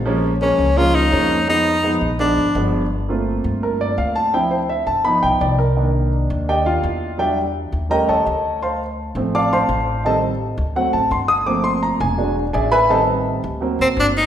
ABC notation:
X:1
M:4/4
L:1/8
Q:1/4=168
K:Bbphr
V:1 name="Grand piano"
[F,A,B,D] z [F,A,B,D] z [F,A,B,D] z [F,A,B,D] z | [F,A,CE] z [F,A,CE] z [F,A,C=D] z [F,A,CD] z | [K:Gm] z4 B d f a | g c =e a =b g d _B- |
B2 z2 [Gdeg] [Ff]3 | [Gd=eg] z3 [B_egb] [A_dea]3 | [cfac'] z3 [dfad'] [cfac']3 | [Acea] z3 ^f a c' e' |
d' c' b _a2 z [^Gd=e^g] [=Beg=b] | [Acea] z6 z |]
V:2 name="Grand piano"
z8 | z8 | [K:Gm] z [A,B,CF]6- [A,B,CF] | [F,C=E] z3 [F,=B,_E]3 z |
[E,B,D]8 | [^F,G,D] z3 [G,A,_D] z3 | z3 [F,A,C]3 z2 | [E,G,C] z3 [^F,A,C] z3 |
[F,A,B,C]4 [^F,^G,D] z3 | [E,G,C]3 z [^F,B,C]3 z |]
V:3 name="Tenor saxophone"
z2 D2 F E3 | E3 z =D3 z | [K:Gm] z8 | z8 |
z8 | z8 | z8 | z8 |
z8 | z4 z C D E |]
V:4 name="Upright bass" clef=bass
B,,,3 D,,3 F,,2- | F,,3 B,,,2 A,,, =G,,,2- | [K:Gm] G,,,3 G,,3 D,,2- | D,,3 G,,,2 =B,,, C,,2- |
C,,3 E,,3 =E,,2- | =E,,3 _E,,2 E,, D,,2- | D,,3 A,,,3 A,,,2- | A,,,3 D,,2 A,,, G,,,2- |
G,,,3 =E,,,3 A,,,2- | A,,,3 D,,2 A,,, G,,,2 |]